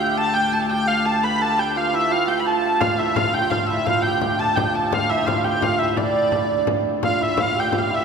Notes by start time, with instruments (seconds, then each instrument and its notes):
Already playing: viola da gamba D2, hammered dulcimer D4 F4, hurdy-gurdy G5
0.00 hammered dulcimer G4
0.17 hammered dulcimer A4, hurdy-gurdy A5
0.34 hammered dulcimer G4, hurdy-gurdy G5
0.53 hammered dulcimer A4, hurdy-gurdy A5
0.70 hammered dulcimer G4, hurdy-gurdy G5
0.87 hurdy-gurdy F5
1.05 hammered dulcimer A4, hurdy-gurdy A5
1.23 hammered dulcimer B4, hurdy-gurdy B5
1.41 hammered dulcimer A4, hurdy-gurdy A5
1.58 hammered dulcimer G4, hurdy-gurdy G5
1.76 hammered dulcimer F4, hurdy-gurdy F5
1.93 hammered dulcimer E4, hurdy-gurdy E5
2.11 hammered dulcimer F4, hurdy-gurdy F5
2.28 hammered dulcimer G4, hurdy-gurdy G5
2.40 hurdy-gurdy B5
2.45 hammered dulcimer A4, hurdy-gurdy A5
2.81 viola da gamba D2, hammered dulcimer F4, hurdy-gurdy F5, frame drum
2.98 hammered dulcimer E4, hurdy-gurdy E5
3.15 hammered dulcimer F4, hurdy-gurdy F5, frame drum
3.29 hammered dulcimer F4
3.34 hurdy-gurdy G5, frame drum
3.42 hammered dulcimer F4
3.50 hammered dulcimer F4, hurdy-gurdy F5, frame drum
3.66 hurdy-gurdy E5
3.70 hammered dulcimer E4
3.86 hammered dulcimer F4, hurdy-gurdy F5, frame drum
4.02 hurdy-gurdy G5
4.06 hammered dulcimer G4
4.21 hammered dulcimer G4, frame drum
4.39 hammered dulcimer A4, hurdy-gurdy A5, frame drum
4.56 hammered dulcimer G4, hurdy-gurdy G5, frame drum
4.75 hammered dulcimer A4, hurdy-gurdy A5
4.92 hammered dulcimer F4, hurdy-gurdy F5, frame drum
5.09 hammered dulcimer E4, hurdy-gurdy E5
5.26 hammered dulcimer F4, hurdy-gurdy F5, frame drum
5.43 hammered dulcimer G4, hurdy-gurdy G5
5.61 hammered dulcimer F4, hurdy-gurdy F5, frame drum
5.79 hammered dulcimer E4, hurdy-gurdy E5
5.96 hammered dulcimer D4, hurdy-gurdy D5, frame drum
6.32 frame drum
6.67 frame drum
6.85 frame drum
7.03 viola da gamba D2, hammered dulcimer F4, hurdy-gurdy F5, frame drum
7.20 hammered dulcimer E4, hurdy-gurdy E5
7.37 hammered dulcimer F4, hurdy-gurdy F5, frame drum
7.55 hammered dulcimer G4, frame drum
7.60 hurdy-gurdy G5
7.72 hammered dulcimer F4, frame drum
7.78 hurdy-gurdy F5
7.90 hammered dulcimer E4
7.94 hurdy-gurdy E5